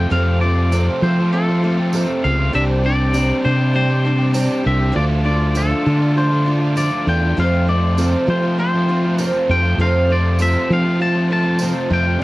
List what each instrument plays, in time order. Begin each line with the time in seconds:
Already playing: overdriven electric guitar C3 F3 A3 C4 F4, steel-string acoustic guitar F3 A3 C4, accordion A4 C5 F5, clean electric guitar G5
0.10 overdriven electric guitar F2 C3 F3 A3 C4 F4, fingered electric bass F2, grand piano C4 F4 A4 C5, steel-string acoustic guitar A4, clean electric guitar F5, accordion D6
0.41 overdriven electric guitar F3 A3 C4 F4, steel-string acoustic guitar A4, clean electric guitar D5
0.72 overdriven electric guitar F2 C3 F3 A3 C4 F4, grand piano C4 F4 A4 C5, steel-string acoustic guitar A4, tambourine
0.88 overdriven electric guitar F3 A3 C4 F4
1.02 fingered electric bass F3, overdriven electric guitar F3 A3 C4 F4, grand piano C4 F4 A4 C5, steel-string acoustic guitar A4, clean electric guitar C5
1.19 overdriven electric guitar F3 A3 C4 F4
1.32 steel-string acoustic guitar F3 A3 C4 A4, grand piano C4 F4 A4 C5, clean electric guitar A4
1.48 overdriven electric guitar F3 A3 C4 F4
1.63 overdriven electric guitar F3 A3 C4 F4, steel-string acoustic guitar A4
1.78 overdriven electric guitar F3 A3 C4 F4
1.93 overdriven electric guitar F2 C3 F3 A3 C4 F4, grand piano C4 F4 A4 C5, steel-string acoustic guitar A4, tambourine
2.24 fingered electric bass C#2, overdriven electric guitar F3 A3 C4 F4, steel-string acoustic guitar A4, clean electric guitar F5
2.39 overdriven electric guitar F3 A3 C4 F4
2.51 fingered electric bass C2, overdriven electric guitar C3 G3 C4 D4, grand piano D4 G4 C5 D5, accordion D5 G5 D6, clean electric guitar E5
2.56 overdriven electric guitar G4
2.84 overdriven electric guitar G3 C4 D4 G4, clean electric guitar D5
3.12 overdriven electric guitar C3 G3 C4, grand piano D4 G4 C5 D5, tambourine
3.17 overdriven electric guitar D4 G4
3.29 overdriven electric guitar C4 D4 G4
3.43 fingered electric bass C3, overdriven electric guitar G3 C4 D4 G4, grand piano D4 G4 C5 D5, clean electric guitar C5
3.59 overdriven electric guitar C4 D4 G4
3.73 steel-string acoustic guitar G3 C4 D4 G4, grand piano D4 G4 C5 D5, clean electric guitar C5
3.90 overdriven electric guitar C4 D4 G4
4.05 overdriven electric guitar G3 C4 D4 G4
4.19 overdriven electric guitar C4 D4 G4
4.34 overdriven electric guitar C3 G3 C4 D4 G4, grand piano D4 G4 C5 D5, tambourine
4.63 fingered electric bass C2, overdriven electric guitar G3 C4 D4 G4, clean electric guitar E5
4.80 overdriven electric guitar C4 D4 G4
4.92 fingered electric bass D2, overdriven electric guitar D3 A3, steel-string acoustic guitar F3, grand piano D4 F4 A4 D5, accordion F4 A5 D6
4.96 overdriven electric guitar D4 F4, clean electric guitar D5
5.24 overdriven electric guitar D3 A3, steel-string acoustic guitar F4, clean electric guitar D5
5.28 overdriven electric guitar D4 F4
5.55 overdriven electric guitar D3 A3 D4, steel-string acoustic guitar F3, grand piano D4 F4 A4 D5, clean electric guitar A4, tambourine
5.59 overdriven electric guitar F4
5.72 overdriven electric guitar A3 D4 F4
5.85 overdriven electric guitar D3 A3 D4 F4, fingered electric bass D3, grand piano D4 F4 A4 D5
5.99 overdriven electric guitar A3 D4 F4
6.16 steel-string acoustic guitar F3 A3 D4 F4, grand piano D4 F4 A4 D5, clean electric guitar C5
6.31 overdriven electric guitar A3 D4 F4
6.46 overdriven electric guitar D3 A3 D4 F4
6.61 overdriven electric guitar A3 D4 F4
6.76 overdriven electric guitar D3 A3 D4 F4, steel-string acoustic guitar F3, grand piano D4 F4 A4 D5, clean electric guitar D5, tambourine
7.05 fingered electric bass E2, overdriven electric guitar D3 A3 D4 F4, clean electric guitar G5
7.22 overdriven electric guitar A3 D4 F4
7.37 overdriven electric guitar F2 C3 F3 A3 C4 F4, fingered electric bass F2, grand piano C4 F4 A4 C5, accordion F4 C5 C6, clean electric guitar F5
7.67 overdriven electric guitar F3 A3 C4 F4, clean electric guitar D5
7.97 overdriven electric guitar F2 C3 F3 A3 C4 F4, grand piano C4 F4 A4 C5, tambourine
8.13 overdriven electric guitar F3 A3 C4 F4
8.28 overdriven electric guitar F3 A3 C4 F4, fingered electric bass F3, grand piano C4 F4 A4 C5, clean electric guitar C5
8.42 overdriven electric guitar F3 A3 C4 F4
8.58 steel-string acoustic guitar F3 A3 C4 F4, grand piano C4 F4 A4 C5, clean electric guitar C5
8.73 overdriven electric guitar F3 A3 C4 F4
8.89 overdriven electric guitar F3 A3 C4 F4
9.04 overdriven electric guitar F3 A3 C4 F4
9.18 overdriven electric guitar F2 C3 F3 A3 C4 F4, grand piano C4 F4 A4 C5, clean electric guitar A#4, tambourine
9.48 fingered electric bass F2, overdriven electric guitar F3 A3 C4 F4, clean electric guitar G5
9.63 overdriven electric guitar F3 A3 C4 F4
9.78 overdriven electric guitar F2 C3 F3 A3 C4 F4, fingered electric bass F2, grand piano C4 F4 A4 C5, clean electric guitar F5
10.08 overdriven electric guitar F3 A3 C4 F4
10.12 clean electric guitar D5
10.39 overdriven electric guitar F2 C3 F3 A3 C4 F4, grand piano C4 F4 A4 C5, clean electric guitar E5, tambourine
10.53 overdriven electric guitar F3 A3 C4 F4
10.68 overdriven electric guitar F3 A3 C4 F4, fingered electric bass F3, grand piano C4 F4 A4 C5
10.73 steel-string acoustic guitar F3, clean electric guitar F5
10.83 overdriven electric guitar F3 A3 C4 F4
10.99 steel-string acoustic guitar F3 A3 C4, grand piano C4 F4 A4 C5, clean electric guitar A5
11.03 steel-string acoustic guitar F4
11.14 overdriven electric guitar F3 A3 C4 F4
11.29 overdriven electric guitar F3 A3 C4 F4, clean electric guitar A5
11.44 overdriven electric guitar F3 A3 C4 F4
11.59 overdriven electric guitar F2 C3 F3 A3 C4 F4, grand piano C4 F4 A4 C5, tambourine
11.90 fingered electric bass F2, overdriven electric guitar F3 A3 C4 F4, clean electric guitar G5
12.06 overdriven electric guitar F3 A3 C4 F4
12.18 overdriven electric guitar C3, grand piano D4 G4 C5 D5, accordion G4 D5 D6